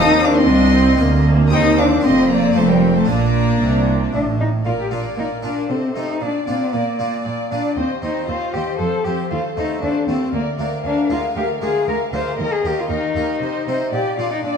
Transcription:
Already playing: double bass section D#2, cello section D#2, harpsichord C4 F4 A4, violin section D#6
0.00 harpsichord D#2, viola section C4, cello D#4
0.23 cello D4, violin section F5 D6
0.36 cello C4, violin section D#5 C6
0.49 double bass section C2, cello section C2, harpsichord C2, viola section D4
0.76 viola section C4
0.96 harpsichord D4 F4 A#4
1.00 cello section D2, harpsichord D2, double bass section D2, viola section A#3
1.28 viola section A#3
1.47 harpsichord C4 G4 C5
1.51 double bass section D#2, cello section D#2, harpsichord D#2, viola section C4, cello D#4, violin section G5 D#6
1.77 cello D4, violin section F5 D6
2.00 cello section F2, harpsichord D4 F4 A#4, violin section C6
2.04 double bass section F1, harpsichord F2, cello C4, violin section D#5
2.30 cello A#3, violin section D5 A#5
2.52 double bass section F1, cello section F2, harpsichord D#4 F4 C5, violin section C5 A5
2.56 harpsichord F2, cello A3, viola section C4
2.69 cello G3, violin section A#4 G5
2.95 cello A3, violin section C5 A5
3.05 double bass section A#1, cello section A#2, cello A#3, harpsichord D4 F4 A#4, viola section D4, violin section D5 A#5
3.09 harpsichord A#2
3.60 double bass section C2, cello section C3, harpsichord C3
4.13 double bass section A1, harpsichord A2, cello section A2, cello D4
4.40 cello D#4
4.64 harpsichord A#2, cello section A#2, cello F4, viola section A#4, violin section D5 F5
4.80 cello G4
4.91 harpsichord A#2 A#3 D4 F4, cello section A#2, cello F4, viola section A#4, violin section D5 F5
5.16 harpsichord A#2, cello section A#2, cello D#4, viola section A#4, violin section D5 F5
5.42 harpsichord A#2 A#3 D4 F4, cello section A#2, cello D4, viola section A#4, violin section D5 F5
5.69 cello section C3, harpsichord C3, cello C4, viola section A4, violin section C5 D#5
5.94 cello section C3, harpsichord C3 A3 C4 D#4, cello D#4, viola section A4, violin section C5 D#5
6.20 harpsichord A#2, cello section A#2, cello D4, viola section D5, violin section D5 F5
6.47 cello section A#2, harpsichord A#2 A#3 D4 F4, cello C4, viola section D5, violin section D5 F5
6.73 cello section A#2, harpsichord A#2, cello A#3, viola section D5, violin section D5 F5
6.98 harpsichord A#2 A#3 D4 F4, cello section A#2, violin section D5 F5, viola section D5
7.24 cello section A#2, harpsichord A#2, violin section D5 F5, viola section D5
7.50 cello section A#2, harpsichord A#2 A#3 D4 F4, cello D4, violin section D5 F5, viola section D5
7.76 harpsichord D#2, cello section D#2, cello C4, viola section C5, violin section D#5 G5
8.02 harpsichord D#2 C4, cello section D#2, cello D#4, viola section C5, violin section D#5 G5
8.27 cello section D#2, harpsichord D#2, cello F4, viola section C5, violin section D#5 G5
8.54 harpsichord D#2 C4, cello section D#2, cello G4, viola section C5, violin section D#5 G5
8.79 harpsichord F2, cello section F2, cello A4, viola section C5, violin section C5 F5
9.05 harpsichord F2 C4, cello section F2, cello G4, viola section C5, violin section C5 F5
9.30 harpsichord D#2, cello section D#2, cello F4, viola section A4, violin section C5 F5
9.55 cello section D#2, harpsichord D#2 A3 C4, cello D#4, viola section A4, violin section C5 F5
9.81 cello section D#2, harpsichord D#2, cello D4, viola section A4, violin section C5 F5
10.07 cello section D#2, harpsichord D#2 A3 C4, cello C4, viola section A4, violin section C5 F5
10.33 cello section D2, harpsichord D2, cello A#3, viola section A#4, violin section D5 F5
10.58 harpsichord D2 A#3 D4, cello section D2, viola section A#4, violin section D5 F5
10.83 cello section D2, harpsichord D2, cello D4, viola section A#4, violin section F5 G#5
11.09 cello section D2, harpsichord D2 G#3 A#3 F4, cello F4, viola section A#4, violin section F5 G#5
11.35 cello section D2, harpsichord D2, cello G4, viola section A#4, violin section F5 G#5
11.59 cello section D2, harpsichord D2 G#3 A#3 F4, cello G#4, viola section A#4, violin section F5 G#5
11.86 cello section D2, harpsichord D2, viola section A#4, cello A#4, violin section F5 G#5
12.12 cello section D2, harpsichord D2 G#3 A#3 F4, viola section A#4, cello C5, violin section F5 G#5
12.37 cello section D#2, harpsichord D#2, viola section A#4, cello A#4, violin section D#5 G5
12.53 cello G#4
12.63 cello section D#2, harpsichord D#2 A#3 D#4, cello G4, viola section A#4, violin section D#5 G5
12.79 cello F4
12.89 cello section D#2, harpsichord D#2, cello D#4, viola section A#4, violin section D#5 G5
13.15 cello section D#2, harpsichord D#2 A#3 D#4, viola section A#4, violin section D#5 G5
13.41 cello section C3, harpsichord C3, viola section C5, violin section D#5 G5
13.66 cello section C3, harpsichord C3 C4 D#4, viola section C5, violin section D#5 G5
13.91 cello section A#2, harpsichord A#2, cello G4, viola section D5, violin section D5 G5
14.17 cello section A#2, harpsichord A#2 D4, cello F4, viola section D5, violin section D5 G5
14.32 cello D#4
14.43 cello section A#2, harpsichord A#2, cello D4, viola section D5, violin section D5 G5

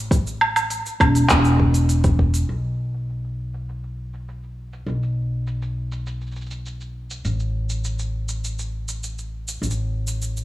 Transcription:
Already playing: upright bass A1
0.11 kick, open hi-hat, shaker
0.27 shaker
0.41 low woodblock
0.56 open hi-hat, low woodblock, shaker
0.70 open hi-hat, shaker
0.86 shaker
1.00 upright bass E1, kick, open hi-hat, low woodblock
1.15 open hi-hat, shaker
1.29 upright bass E1, clap, open hi-hat, shaker
1.45 shaker
1.60 kick
1.74 open hi-hat, shaker
1.89 open hi-hat, shaker
2.04 kick, open hi-hat, shaker
2.19 kick
2.34 open hi-hat, shaker
2.49 upright bass B1, shaker
2.64 shaker
2.94 shaker
3.09 shaker
3.24 shaker
3.54 shaker
3.69 shaker
3.83 shaker
4.13 shaker
4.28 shaker
4.43 shaker
4.73 shaker
4.87 upright bass B1, shaker
5.03 shaker
5.47 shaker
5.62 shaker
5.92 shaker
6.07 shaker
6.21 shaker
6.27 shaker
6.31 shaker
6.36 shaker
6.41 shaker
6.46 shaker
6.51 shaker
6.66 shaker
6.81 shaker
7.11 shaker
7.25 upright bass A1, shaker
7.40 shaker
7.70 shaker
7.85 shaker
7.99 shaker
8.29 shaker
8.44 shaker
8.59 shaker
8.88 shaker
9.04 shaker
9.18 shaker
9.48 shaker
9.62 upright bass A1, shaker
9.71 shaker
10.07 shaker
10.22 shaker
10.37 shaker

